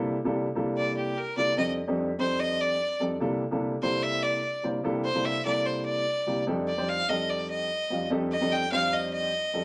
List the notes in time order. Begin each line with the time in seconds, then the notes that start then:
Already playing: C3 G3 A#3 D4 E4 A4
0.24 C3 G3 A#3 D4 E4 A4
0.55 C3 G3 A#3 D4 E4 A4
0.77 D5
0.97 G4
1.17 A#4
1.37 C3 G3 A#3 D4 E4 A4 D5
1.56 F2 G3 C4 D4 D#4 A4 D#5
1.87 F2 G3 C4 D4 D#4 A4
2.18 F2 G3 C4 D4 D#4 A4 C5
2.40 D#5
2.61 D5
3.00 F2 G3 C4 D4 D#4 A4
3.20 C3 G3 A#3 D4 E4 A4
3.51 C3 G3 A#3 D4 E4 A4
3.82 C3 G3 A#3 D4 E4 A4 C5
4.03 E5
4.23 D5
4.63 C3 G3 A#3 D4 E4 C5
4.83 C3 G3 A#3 D4 E4 A4
5.04 C5
5.14 C3 G3 A#3 D4 E4 A4
5.25 E5
5.45 C3 G3 A#3 D4 E4 A4 D5
5.66 C5
5.85 D5
6.26 C3 G3 A#3 D4 E4 G4
6.47 F2 G3 C4 D4 D#4 A4
6.68 D5
6.77 F2 G3 C4 D4 D#4 C5
6.89 F5
7.08 F2 G3 C4 D4 D#4 A4 D#5
7.30 D5
7.50 D#5
7.90 F2 G3 C4 D4 D#4 F4
8.10 F2 G3 C4 D4 D#4 A4
8.32 D#5
8.40 F2 G3 C4 D4 D#4 A4
8.52 G5
8.71 F2 G3 C4 D4 D#4 C5 F5
8.93 D#5
9.14 D#5
9.53 F2 G3 C4 D4 D#4 A4